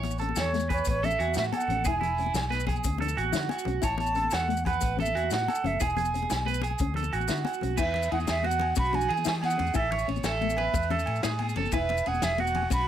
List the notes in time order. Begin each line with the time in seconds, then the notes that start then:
Already playing: A1 C#5
0.03 closed hi-hat, high conga, low conga
0.11 maracas
0.18 C#4 A4, closed hi-hat, low conga, maracas
0.29 muted conga, high conga
0.36 E2 C#5, snare, closed hi-hat, low conga, low agogo, maracas
0.44 low conga
0.53 A3, snare, closed hi-hat, high conga
0.60 maracas
0.69 B4 C#5, kick, closed hi-hat, muted conga, low conga, low agogo
0.77 high conga, maracas
0.85 A1 B3, kick, closed hi-hat, low conga, maracas
0.90 C#5
1.03 C#4 A4 E5, closed hi-hat, high conga, low conga
1.11 muted conga, maracas
1.19 E2 F#4, closed hi-hat, low conga, low agogo
1.28 high conga
1.34 A2 E4, snare, closed hi-hat, low conga, maracas
1.38 E5
1.44 maracas
1.52 A4 F#5, closed hi-hat, muted conga, high conga, low agogo
1.60 low conga, maracas
1.68 A1 C#4, closed hi-hat, low conga
1.76 high conga
1.84 E1 E4 G#4 G#5, kick, closed hi-hat, muted conga, low conga, low agogo, maracas
2.01 E4, closed hi-hat, high conga, low conga
2.17 C#4, closed hi-hat, low conga, maracas
2.26 muted conga, high conga
2.34 B1, snare, closed hi-hat, low conga, low agogo, maracas
2.43 low conga, maracas
2.50 B3 B4, snare, closed hi-hat, high conga
2.60 maracas
2.67 G#4, kick, closed hi-hat, muted conga, low conga, low agogo
2.75 high conga, maracas
2.83 D2 C#4, kick, closed hi-hat, low conga, maracas
2.98 D4 A4, closed hi-hat, high conga, low conga
3.07 muted conga, maracas
3.16 A1 F#4, closed hi-hat, low conga, low agogo
3.23 high conga
3.32 D3 E4, snare, closed hi-hat, low conga, maracas
3.42 maracas
3.49 F#4, closed hi-hat, muted conga, high conga, low agogo
3.58 low conga, maracas
3.65 B1 C#4, closed hi-hat, low conga
3.73 high conga
3.81 A1 E4 C#5 A5, kick, closed hi-hat, muted conga, low conga, low agogo, maracas
3.98 A5, closed hi-hat, high conga, low conga
4.06 maracas
4.15 C#4 A4, closed hi-hat, low conga, maracas
4.24 high conga
4.31 E2 F#5, snare, closed hi-hat, low conga, low agogo, maracas
4.39 low conga, maracas
4.48 A3, closed hi-hat, high conga
4.57 maracas
4.65 B4 F#5, kick, closed hi-hat, muted conga, low conga, low agogo
4.73 high conga, maracas
4.81 A1 B3, kick, closed hi-hat, low conga, maracas
4.97 C#4 A4, closed hi-hat, high conga, low conga
5.01 E5
5.06 muted conga, maracas
5.15 E2 F#4, closed hi-hat, low conga, low agogo
5.24 high conga
5.30 A2 E4 F#5, snare, closed hi-hat, low conga, maracas
5.38 maracas
5.48 A4, closed hi-hat, muted conga, high conga, low agogo
5.55 low conga, maracas
5.64 F#1 C#4 E5, closed hi-hat, low conga
5.73 high conga
5.80 E1 E4 G#4 G#5, kick, closed hi-hat, muted conga, low conga, low agogo, maracas
5.89 maracas
5.97 G#4, closed hi-hat, high conga, low conga, maracas
6.05 maracas
6.14 C#4, closed hi-hat, low conga, maracas
6.22 muted conga, high conga
6.30 B1, snare, closed hi-hat, low conga, low agogo, maracas
6.46 B3 B4, closed hi-hat, high conga
6.54 maracas
6.62 G#4, closed hi-hat, muted conga, low conga, low agogo, maracas
6.71 high conga, low conga
6.78 D2 C#4, kick, closed hi-hat, low conga, maracas
6.94 D4 A4, closed hi-hat, low conga
7.03 muted conga, maracas
7.13 A1 F#4, closed hi-hat, low agogo
7.20 high conga, low conga, maracas
7.28 D3 E4, snare, closed hi-hat, low conga, maracas
7.37 maracas
7.45 F#4, closed hi-hat, muted conga, high conga, low conga, low agogo
7.53 low conga, maracas
7.61 B1 C#4, closed hi-hat, low conga
7.70 high conga
7.77 E2 E4 B4 E5, kick, crash, muted conga, low agogo, maracas
7.94 ride, low conga
8.02 maracas
8.11 E2 E4 G#4 F#5, ride
8.19 high conga, maracas
8.27 E2 E5, snare, ride, muted conga, low conga, low agogo, maracas
8.43 B3 F#4 F#5, ride, high conga
8.51 maracas
8.59 ride, low conga, low agogo
8.69 low conga
8.76 B1 C#4 F#4 B5, kick, ride, muted conga, low conga, maracas
8.85 maracas
8.93 D4 G#5, ride, high conga, low conga
9.01 maracas
9.09 E3 G#4, ride, low agogo
9.17 high conga, maracas
9.24 E3 E4 G#5, snare, ride, muted conga, low conga, maracas
9.41 G#4 F#5, snare, ride, high conga, low agogo
9.50 maracas
9.57 E2 C#4, ride, low conga
9.67 high conga, low conga, maracas
9.74 A1 E4 A4 E5, kick, ride, muted conga, low agogo, maracas
9.92 C#5, ride, low conga
9.99 maracas
10.08 A1 C#4, ride
10.16 high conga, maracas
10.23 A1 A4 E5, snare, ride, muted conga, low conga, low agogo, maracas
10.41 A3, ride, high conga
10.50 maracas
10.57 B4, ride, low conga, low agogo
10.65 high conga, low conga
10.74 E2 B3, kick, ride, muted conga, low conga, maracas
10.82 low conga, maracas
10.90 C#4 A4, ride, high conga, low conga
10.99 maracas
11.06 A2, ride, low agogo
11.16 maracas
11.23 A2 E4 G#4, snare, ride, muted conga, low conga, maracas
11.39 ride, high conga, low agogo
11.49 maracas
11.55 F#1 C#4 A4, ride, low conga
11.65 high conga, low conga, maracas
11.72 E1 E4 B4 E5, kick, ride, muted conga, low agogo, maracas
11.89 ride, high conga, low conga
11.97 maracas
12.06 E1 C#4 G#4 F#5, ride
12.14 high conga, maracas
12.22 E1 E5, snare, ride, muted conga, low conga, low agogo, maracas
12.38 B3 F#4 F#5, ride, high conga
12.47 maracas
12.54 ride, low conga, low agogo
12.62 high conga, low conga
12.70 B1 C#4 F#4 B5, kick, ride, muted conga, low conga, maracas
12.78 low conga